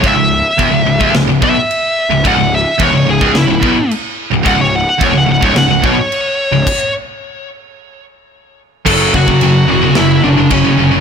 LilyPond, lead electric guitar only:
\new Staff \with { instrumentName = "Lead electric guitar" } { \time 4/4 \key cis \minor \tempo 4 = 109 e''2 r8 e''4. | fis''8 e''8 cis''8 gis'8 e'4 r4 | fis''16 cis''16 fis''16 fis''16 cis''16 fis''16 fis''16 cis''16 fis''8 cis''4.~ | cis''8 r2. r8 |
a'8 fis'4. e'8 d'8 cis'8. r16 | }